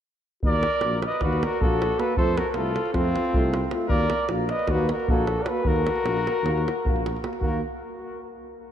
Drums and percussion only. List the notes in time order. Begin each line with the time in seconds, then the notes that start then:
0.43 davul low
0.53 davul high
0.63 davul high
0.81 davul high
1.02 davul high
1.12 davul high
1.21 davul high, davul low
1.33 davul high
1.43 davul high
1.53 davul high
1.61 davul low
1.82 davul high
2.00 davul high
2.17 davul low
2.27 davul high
2.38 davul high
2.54 davul high
2.76 davul high
2.86 davul high
2.94 davul high, davul low
3.05 davul high
3.16 davul high
3.25 davul high
3.34 davul low
3.54 davul high
3.71 davul high
3.90 davul low
4.00 davul high
4.10 davul high
4.29 davul high
4.49 davul high
4.59 davul high
4.67 davul high, davul low
4.78 davul high
4.89 davul high
5.00 davul high
5.08 davul low
5.27 davul high
5.46 davul high
5.65 davul low
5.76 davul high
5.87 davul high
5.96 davul high
6.06 davul high
6.17 davul high
6.27 davul high
6.46 davul high
6.58 davul high
6.68 davul high
6.86 davul low
6.96 davul high
7.06 davul high
7.17 davul high
7.24 davul high
7.33 davul high
7.42 davul low